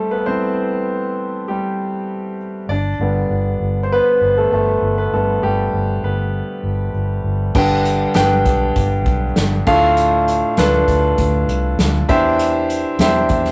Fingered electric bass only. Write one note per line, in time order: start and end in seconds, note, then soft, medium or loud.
2.69 2.94 G1 medium
2.99 3.25 G1 medium
3.30 3.55 G1 medium
3.60 3.98 G1 medium
4.21 4.46 G1 medium
4.52 4.76 G1 medium
4.82 5.07 G1 medium
5.12 5.37 G1 medium
5.43 5.68 G1 medium
5.74 5.98 G1 medium
6.03 6.41 G1 medium
6.63 6.88 G1 medium
6.94 7.19 G1 medium
7.24 7.49 G1 medium
7.55 8.05 G1 medium
8.15 8.46 G1 medium
8.46 8.71 B1 medium
8.76 9.06 G1 medium
9.06 9.31 B1 medium
9.36 9.61 G1 loud
9.67 10.41 D2 medium
10.58 10.83 D2 loud
10.88 11.13 D2 medium
11.18 11.43 D2 loud
11.48 11.73 C2 medium
11.78 12.03 D2 medium
12.09 12.84 E2 medium
12.99 13.24 E2 loud
13.30 13.52 E2 medium